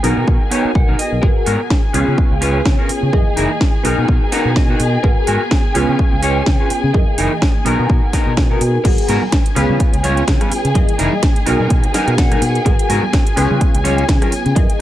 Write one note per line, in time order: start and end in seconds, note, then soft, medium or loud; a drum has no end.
0.00 0.12 B1 medium
0.00 1.18 B3 medium
0.00 0.43 B3 medium
0.00 1.18 D#4 medium
0.00 0.43 D#4 medium
0.00 1.19 F#4 medium
0.00 1.22 G#4 medium
0.00 1.22 G#5 medium
0.00 open hi-hat loud
0.04 0.43 A#4 loud
0.04 1.19 A#4 loud
0.17 0.24 B2 medium
0.28 0.36 B2 medium
0.28 kick loud
0.51 0.70 B3 loud
0.51 0.70 D#4 loud
0.51 0.70 C#5 loud
0.51 0.73 G#5 medium
0.51 open hi-hat loud
0.65 muted fingered electric bass stroke soft
0.75 0.84 B1 medium
0.75 0.97 F#5 medium
0.75 kick loud
0.88 0.95 B1 medium
0.88 0.99 B3 medium
0.88 0.99 D#4 medium
0.88 0.99 A#4 medium
0.99 1.21 D#5 medium
0.99 open hi-hat loud
1.12 1.19 B1 medium
1.12 muted clean electric guitar stroke soft
1.22 1.90 B3 medium
1.22 1.90 F#4 medium
1.22 8.83 G#4 medium
1.22 1.90 G#4 medium
1.22 1.89 A#4 medium
1.22 8.83 G#5 medium
1.22 kick loud
1.46 1.55 G#2 medium
1.46 1.60 B3 loud
1.46 1.60 F#4 medium
1.46 1.60 A#4 loud
1.46 open hi-hat loud
1.70 kick loud
1.70 snare loud
1.93 2.03 C#2 medium
1.93 3.09 B3 medium
1.93 3.09 C#4 medium
1.93 2.33 C#4 medium
1.93 3.09 F4 medium
1.93 2.34 F4 medium
1.93 3.09 G#4 loud
1.93 2.34 B4 loud
1.93 open hi-hat loud
2.08 2.14 C#3 medium
2.18 muted fingered electric bass stroke soft
2.18 kick loud
2.31 2.59 C#2 loud
2.41 2.60 C#4 loud
2.41 2.60 F4 loud
2.41 2.61 B4 loud
2.41 open hi-hat loud
2.66 2.74 C#3 medium
2.66 kick loud
2.66 snare loud
2.78 2.89 C#4 medium
2.78 2.89 F4 medium
2.78 2.90 A#4 medium
2.89 muted fingered electric bass stroke soft
2.89 open hi-hat loud
3.02 3.09 C#3 medium
3.02 muted clean electric guitar stroke soft
3.12 3.22 F#2 loud
3.12 3.81 E3 medium
3.12 3.80 A#3 medium
3.12 3.81 G#4 medium
3.12 3.80 D#5 medium
3.12 kick loud
3.36 3.46 F#1 medium
3.36 3.50 D#4 loud
3.36 3.50 E4 medium
3.36 3.51 G#4 loud
3.36 3.51 A#4 loud
3.36 open hi-hat medium
3.61 kick loud
3.61 snare loud
3.83 3.93 B1 medium
3.83 4.99 B3 medium
3.83 4.24 B3 medium
3.83 4.99 D#4 medium
3.83 4.24 D#4 medium
3.83 5.00 F#4 medium
3.83 5.00 A#4 loud
3.83 4.24 A#4 loud
3.83 open hi-hat loud
3.98 4.05 B2 medium
4.08 kick loud
4.32 4.51 B3 loud
4.32 4.51 D#4 loud
4.32 4.51 A#4 loud
4.32 4.55 F#5 medium
4.32 snare medium
4.32 open hi-hat loud
4.45 4.74 B2 medium
4.56 5.01 D#5 medium
4.56 kick loud
4.56 snare loud
4.69 4.80 B3 medium
4.69 4.80 D#4 medium
4.69 4.80 F#4 medium
4.80 4.96 B2 loud
4.80 open hi-hat medium
4.93 muted clean electric guitar stroke soft
5.03 5.12 G#1 loud
5.03 5.71 B3 medium
5.03 5.71 F#4 medium
5.03 5.71 G#4 medium
5.03 5.71 A#4 medium
5.03 kick loud
5.27 5.36 G#2 medium
5.27 5.41 B3 loud
5.27 5.41 F#4 loud
5.27 5.41 A#4 loud
5.27 open hi-hat loud
5.51 kick loud
5.51 snare loud
5.74 5.84 C#2 medium
5.74 6.90 B3 medium
5.74 6.14 C#4 medium
5.74 6.90 C#4 medium
5.74 6.15 F4 medium
5.74 6.90 F4 medium
5.74 6.90 G#4 loud
5.74 6.15 B4 loud
5.74 open hi-hat medium
5.88 5.95 C#3 medium
5.99 muted fingered electric bass stroke soft
5.99 kick loud
6.12 6.41 C#2 loud
6.22 6.41 C#4 loud
6.22 6.41 F4 loud
6.22 6.42 C#5 loud
6.22 open hi-hat loud
6.46 6.55 C#3 medium
6.46 kick loud
6.46 snare loud
6.60 6.70 C#4 medium
6.60 6.71 F4 medium
6.60 6.71 B4 medium
6.70 muted fingered electric bass stroke soft
6.70 open hi-hat loud
6.83 6.90 C#3 medium
6.83 muted clean electric guitar stroke soft
6.93 7.03 F#2 medium
6.93 7.62 E3 medium
6.93 7.61 A#3 medium
6.93 7.62 G#4 medium
6.93 7.61 D#5 medium
6.93 kick loud
7.18 7.27 F#1 medium
7.18 7.31 D#4 loud
7.18 7.32 E4 loud
7.18 7.32 G#4 loud
7.18 7.32 A#4 loud
7.18 open hi-hat loud
7.42 kick loud
7.42 snare loud
7.65 7.74 B1 medium
7.65 8.80 B3 medium
7.65 8.05 B3 medium
7.65 8.80 D#4 medium
7.65 8.05 D#4 medium
7.65 8.81 F#4 medium
7.65 8.81 A#4 loud
7.65 8.05 A#4 loud
7.65 open hi-hat medium
7.79 7.86 B2 medium
7.90 kick loud
8.13 8.32 B3 loud
8.13 8.32 D#4 loud
8.13 8.32 A#4 loud
8.13 kick medium
8.13 snare medium
8.13 open hi-hat loud
8.26 8.55 B2 medium
8.37 kick loud
8.37 snare loud
8.50 8.61 B3 medium
8.50 8.61 D#4 medium
8.50 8.62 A#4 medium
8.60 8.77 B2 medium
8.60 open hi-hat loud
8.74 muted clean electric guitar stroke soft
8.84 8.93 G#1 loud
8.84 9.52 B3 medium
8.84 9.52 F#4 medium
8.84 14.81 G#4 medium
8.84 9.52 G#4 medium
8.84 9.51 A#4 medium
8.84 14.81 G#5 medium
8.84 kick loud
8.84 closed hi-hat medium
8.84 crash medium
8.84 tambourine medium
8.84 high conga medium
8.98 closed hi-hat medium
8.98 tambourine soft
9.08 9.17 G#2 medium
9.08 9.22 B3 loud
9.08 9.22 F#4 loud
9.08 9.22 A#4 loud
9.08 open hi-hat loud
9.08 tambourine medium
9.08 low conga medium
9.22 tambourine soft
9.22 high conga medium
9.32 kick loud
9.32 snare loud
9.32 closed hi-hat medium
9.46 closed hi-hat medium
9.46 tambourine soft
9.55 9.65 C#2 medium
9.55 10.71 B3 medium
9.55 9.95 C#4 medium
9.55 10.71 C#4 medium
9.55 10.71 F4 medium
9.55 9.96 F4 medium
9.55 10.71 G#4 loud
9.55 9.96 B4 loud
9.55 cross-stick medium
9.55 open hi-hat loud
9.55 tambourine loud
9.55 low conga medium
9.69 9.76 C#3 medium
9.69 tambourine soft
9.69 high conga loud
9.80 muted fingered electric bass stroke soft
9.80 kick loud
9.80 closed hi-hat medium
9.80 tambourine soft
9.93 10.21 C#2 loud
9.93 closed hi-hat soft
9.93 tambourine soft
9.93 low conga medium
10.03 10.22 C#4 loud
10.03 10.23 F4 loud
10.03 10.23 C#5 loud
10.03 open hi-hat loud
10.03 tambourine medium
10.03 high conga medium
10.17 closed hi-hat soft
10.17 tambourine soft
10.27 10.36 C#3 medium
10.27 kick loud
10.27 snare loud
10.27 closed hi-hat medium
10.40 10.51 C#4 medium
10.40 10.51 F4 medium
10.40 10.52 B4 medium
10.40 cross-stick medium
10.40 closed hi-hat soft
10.40 tambourine soft
10.40 high conga medium
10.51 muted fingered electric bass stroke soft
10.51 open hi-hat loud
10.51 tambourine medium
10.64 10.71 C#3 medium
10.64 muted clean electric guitar stroke soft
10.64 closed hi-hat soft
10.64 tambourine soft
10.74 10.84 F#2 loud
10.74 11.43 E3 medium
10.74 11.42 A#3 medium
10.74 11.43 G#4 medium
10.74 11.42 D#5 medium
10.74 kick loud
10.74 closed hi-hat medium
10.74 tambourine soft
10.74 high conga medium
10.89 closed hi-hat medium
10.89 tambourine soft
10.98 11.07 F#1 medium
10.98 11.12 D#4 loud
10.98 11.12 E4 medium
10.98 11.12 G#4 loud
10.98 11.13 A#4 loud
10.98 open hi-hat loud
10.98 tambourine medium
10.98 low conga medium
11.13 tambourine soft
11.13 high conga medium
11.23 kick loud
11.23 snare loud
11.23 closed hi-hat medium
11.23 tambourine soft
11.36 closed hi-hat soft
11.36 tambourine soft
11.46 11.55 B1 medium
11.46 12.61 B3 medium
11.46 11.86 B3 medium
11.46 12.61 D#4 medium
11.46 11.86 D#4 medium
11.46 12.62 F#4 medium
11.46 12.62 A#4 loud
11.46 11.86 A#4 loud
11.46 open hi-hat loud
11.46 tambourine medium
11.46 low conga medium
11.60 11.66 B2 medium
11.60 tambourine soft
11.60 high conga medium
11.70 11.79 B2 medium
11.70 kick loud
11.70 closed hi-hat medium
11.70 tambourine soft
11.83 closed hi-hat soft
11.83 tambourine soft
11.83 low conga medium
11.94 12.13 B3 loud
11.94 12.13 D#4 loud
11.94 12.13 A#4 loud
11.94 12.16 D#5 medium
11.94 snare medium
11.94 open hi-hat loud
11.94 tambourine medium
11.94 high conga medium
12.07 12.36 B2 medium
12.07 closed hi-hat soft
12.07 tambourine soft
12.18 12.63 F#5 medium
12.18 kick loud
12.18 snare loud
12.18 closed hi-hat medium
12.18 tambourine medium
12.31 12.42 B3 medium
12.31 12.42 D#4 medium
12.31 12.42 A#4 medium
12.31 cross-stick medium
12.31 closed hi-hat medium
12.31 tambourine soft
12.31 high conga medium
12.41 12.58 B2 loud
12.41 open hi-hat loud
12.41 tambourine medium
12.55 muted clean electric guitar stroke soft
12.55 closed hi-hat soft
12.55 tambourine soft
12.65 12.74 G#1 loud
12.65 13.33 B3 medium
12.65 13.33 F#4 medium
12.65 13.33 G#4 medium
12.65 13.32 A#4 medium
12.65 kick loud
12.65 closed hi-hat medium
12.65 tambourine soft
12.65 high conga medium
12.79 closed hi-hat medium
12.79 tambourine soft
12.89 12.98 G#2 medium
12.89 13.03 B3 loud
12.89 13.03 F#4 loud
12.89 13.03 A#4 loud
12.89 open hi-hat loud
12.89 tambourine medium
12.89 low conga medium
13.03 tambourine soft
13.03 high conga medium
13.13 kick loud
13.13 snare loud
13.13 closed hi-hat medium
13.27 closed hi-hat soft
13.27 tambourine soft
13.36 13.46 C#2 medium
13.36 14.51 B3 medium
13.36 13.76 C#4 medium
13.36 14.52 C#4 medium
13.36 14.52 F4 medium
13.36 13.76 F4 medium
13.36 14.52 G#4 loud
13.36 13.77 B4 loud
13.36 cross-stick medium
13.36 open hi-hat loud
13.36 tambourine medium
13.36 low conga medium
13.50 13.57 C#3 medium
13.50 tambourine soft
13.50 high conga medium
13.61 muted fingered electric bass stroke soft
13.61 kick loud
13.61 closed hi-hat medium
13.61 tambourine soft
13.74 14.02 C#2 loud
13.74 closed hi-hat soft
13.74 tambourine soft
13.74 low conga medium
13.84 14.03 C#4 loud
13.84 14.03 F4 loud
13.84 14.04 C#5 loud
13.84 open hi-hat loud
13.84 tambourine medium
13.84 high conga medium
13.98 closed hi-hat soft
13.98 tambourine soft
14.09 14.17 C#3 medium
14.09 kick loud
14.09 snare loud
14.09 closed hi-hat medium
14.21 14.32 C#4 medium
14.21 14.32 F4 medium
14.21 14.33 A#4 medium
14.21 cross-stick medium
14.21 closed hi-hat soft
14.21 tambourine soft
14.21 high conga medium
14.32 muted fingered electric bass stroke soft
14.32 open hi-hat loud
14.32 tambourine medium
14.45 14.52 C#3 medium
14.45 muted clean electric guitar stroke soft
14.45 closed hi-hat soft
14.45 tambourine soft
14.55 14.65 F#2 loud
14.55 14.81 E3 medium
14.55 14.81 A#3 medium
14.55 14.81 G#4 medium
14.55 14.81 D#5 medium
14.55 kick loud
14.55 closed hi-hat medium
14.55 tambourine soft
14.55 high conga medium
14.70 closed hi-hat soft
14.70 tambourine soft